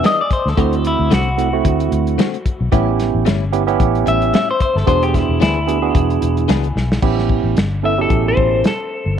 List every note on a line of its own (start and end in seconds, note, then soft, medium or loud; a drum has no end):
0.04 0.21 E3 medium
0.04 0.21 B3 medium
0.04 0.21 D4 medium
0.04 0.22 G#4 medium
0.04 0.19 D#5 medium
0.04 snare loud
0.04 closed hi-hat medium
0.21 0.31 D5 medium
0.31 0.49 C5 medium
0.31 kick medium
0.31 closed hi-hat medium
0.46 0.56 D2 loud
0.46 0.60 A4 medium
0.46 snare soft
0.57 0.95 D2 medium
0.57 0.75 D3 medium
0.57 1.11 A3 medium
0.57 0.75 A3 medium
0.57 1.11 C4 medium
0.57 0.75 C4 medium
0.57 1.11 E4 medium
0.57 1.11 F#4 medium
0.57 0.75 F#4 medium
0.57 0.75 C5 medium
0.57 kick loud
0.57 closed hi-hat medium
0.73 0.85 A4 medium
0.73 closed hi-hat soft
0.85 1.12 E4 medium
0.85 closed hi-hat medium
0.99 1.10 D2 loud
1.11 1.61 C2 medium
1.11 1.28 D3 medium
1.11 1.28 A3 medium
1.11 1.29 C4 medium
1.11 1.29 F#4 medium
1.11 2.70 F#4 loud
1.11 snare loud
1.11 closed hi-hat medium
1.38 1.48 A3 medium
1.38 1.48 C4 medium
1.38 1.48 E4 medium
1.38 1.48 F#4 medium
1.38 closed hi-hat medium
1.53 2.23 A3 medium
1.53 2.23 C4 medium
1.53 2.23 E4 medium
1.53 2.23 F#4 medium
1.65 1.89 D2 loud
1.65 kick loud
1.65 closed hi-hat loud
1.80 closed hi-hat soft
1.92 2.16 D2 medium
1.92 closed hi-hat medium
2.07 closed hi-hat soft
2.18 2.36 D3 medium
2.18 2.36 A3 medium
2.18 2.36 C4 medium
2.18 2.36 F#4 medium
2.18 snare loud
2.18 closed hi-hat medium
2.34 closed hi-hat soft
2.46 kick medium
2.46 closed hi-hat medium
2.61 2.71 B1 loud
2.72 3.10 A1 loud
2.72 2.89 A2 medium
2.72 2.90 G3 medium
2.72 3.26 B3 medium
2.72 3.26 C#4 medium
2.72 2.90 C#4 medium
2.72 3.26 E4 medium
2.72 2.90 E4 loud
2.72 3.26 G4 loud
2.72 kick loud
2.72 closed hi-hat medium
3.00 snare soft
3.00 closed hi-hat medium
3.15 3.25 A1 loud
3.25 3.76 G1 loud
3.25 3.43 A2 medium
3.25 3.43 G3 medium
3.25 3.44 C#4 loud
3.25 3.44 E4 medium
3.25 snare loud
3.25 closed hi-hat medium
3.52 3.63 B3 medium
3.52 3.63 C#4 medium
3.52 3.63 E4 medium
3.52 3.63 G4 loud
3.52 closed hi-hat medium
3.67 4.37 B3 medium
3.67 4.38 C#4 medium
3.67 4.38 E4 medium
3.67 4.38 G4 loud
3.67 closed hi-hat soft
3.80 4.04 A1 loud
3.80 kick loud
3.80 closed hi-hat medium
3.95 closed hi-hat soft
4.06 4.31 A1 medium
4.06 4.25 G3 soft
4.06 4.24 C#4 soft
4.06 4.24 E4 medium
4.06 4.33 E5 loud
4.06 closed hi-hat medium
4.22 closed hi-hat soft
4.33 4.51 A2 medium
4.33 4.51 G3 medium
4.33 4.51 C#4 medium
4.33 4.52 E4 medium
4.33 4.49 E5 medium
4.33 snare loud
4.33 closed hi-hat medium
4.51 4.60 C5 medium
4.60 4.77 C5 medium
4.60 kick medium
4.60 closed hi-hat medium
4.76 4.86 G1 medium
4.76 4.88 A4 medium
4.76 snare soft
4.87 5.25 E1 loud
4.87 5.05 E3 medium
4.87 5.40 B3 medium
4.87 5.05 B3 medium
4.87 5.40 D4 medium
4.87 5.05 D4 medium
4.87 5.40 F#4 medium
4.87 5.41 G#4 medium
4.87 5.05 G#4 medium
4.87 5.02 C5 loud
4.87 kick loud
4.87 closed hi-hat medium
5.03 5.15 G4 loud
5.03 closed hi-hat soft
5.14 5.41 E4 medium
5.14 kick medium
5.14 snare soft
5.14 closed hi-hat medium
5.29 5.40 E1 medium
5.40 5.91 D2 medium
5.40 5.58 E3 medium
5.40 5.58 B3 medium
5.40 5.59 D4 medium
5.40 6.99 E4 medium
5.40 5.59 G#4 medium
5.40 snare loud
5.40 closed hi-hat medium
5.67 5.77 B3 medium
5.67 5.78 D4 medium
5.67 5.78 F#4 medium
5.67 5.78 G#4 medium
5.67 closed hi-hat medium
5.82 6.53 B3 medium
5.82 6.53 D4 medium
5.82 6.53 F#4 medium
5.82 6.53 G#4 medium
5.95 6.19 E1 loud
5.95 kick loud
5.95 closed hi-hat medium
6.10 closed hi-hat soft
6.22 6.46 E1 medium
6.22 closed hi-hat medium
6.37 closed hi-hat soft
6.48 6.73 C#2 medium
6.48 6.66 E3 medium
6.48 6.66 B3 medium
6.48 6.66 D4 medium
6.48 6.67 G#4 medium
6.48 snare loud
6.48 closed hi-hat medium
6.64 closed hi-hat soft
6.76 7.00 B1 medium
6.76 snare medium
6.92 snare medium
7.02 7.40 A1 loud
7.02 7.56 B3 medium
7.02 7.56 C#4 medium
7.02 7.56 E4 medium
7.02 7.56 G4 medium
7.02 kick loud
7.02 crash medium
7.19 snare soft
7.29 kick medium
7.44 7.55 A1 medium
7.56 8.06 G1 medium
7.56 snare loud
7.56 closed hi-hat medium
7.83 7.93 B3 medium
7.83 7.93 C#4 medium
7.83 7.93 E4 medium
7.83 7.93 A4 medium
7.83 7.99 E5 medium
7.98 8.69 B2 medium
7.98 8.69 C#4 medium
7.98 8.69 E4 medium
7.98 8.69 G4 medium
7.98 8.26 A4 medium
8.10 8.35 A1 medium
8.10 kick loud
8.10 closed hi-hat medium
8.28 8.65 C5 medium
8.37 8.62 A1 medium
8.37 kick medium
8.64 9.18 A4 medium
8.64 snare loud
8.64 closed hi-hat medium
9.06 9.17 G1 loud